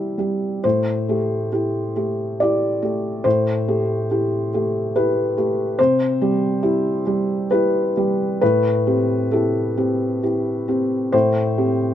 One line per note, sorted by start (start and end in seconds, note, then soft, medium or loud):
0.00 0.60 C3 soft
0.00 0.18 G3 soft
0.00 0.66 E4 soft
0.00 0.19 G4 soft
0.18 0.59 G3 soft
0.18 0.60 G4 soft
0.64 3.21 A2 soft
0.64 2.39 C5 medium
1.09 1.48 A3 soft
1.09 1.49 G4 soft
1.52 1.92 E4 soft
1.52 1.92 G4 soft
1.96 2.35 A3 soft
1.96 2.36 G4 soft
2.40 2.79 E4 soft
2.40 2.80 G4 soft
2.40 3.25 D5 medium
2.82 3.21 A3 soft
2.82 3.21 G4 soft
3.24 5.74 A2 soft
3.24 4.94 C5 medium
3.68 4.06 A3 soft
3.68 4.06 G4 soft
4.11 4.49 E4 soft
4.11 4.49 G4 soft
4.54 4.91 A3 soft
4.54 4.91 G4 soft
4.96 5.34 E4 soft
4.96 5.33 G4 soft
4.96 5.79 B4 medium
5.37 5.75 A3 soft
5.37 5.75 G4 soft
5.79 8.38 C3 medium
5.79 7.50 C5 medium
6.22 6.59 G3 soft
6.22 6.59 G4 soft
6.63 7.02 E4 soft
6.63 7.02 G4 soft
7.07 7.46 G3 soft
7.07 7.46 G4 soft
7.51 7.92 E4 soft
7.51 7.92 G4 soft
7.51 8.40 B4 medium
7.97 8.38 G3 soft
7.97 8.38 G4 soft
8.41 11.10 A2 soft
8.41 9.32 B4 medium
8.87 9.28 C4 soft
8.87 9.28 G4 soft
9.31 9.74 E4 soft
9.31 9.74 G4 soft
9.31 10.22 A4 soft
9.77 10.19 C4 soft
9.77 10.19 G4 soft
10.23 10.65 E4 soft
10.23 10.65 G4 soft
10.68 11.09 C4 soft
10.68 11.09 G4 soft
11.12 11.94 A2 soft
11.12 11.94 C5 medium
11.58 11.94 C4 soft
11.58 11.94 G4 soft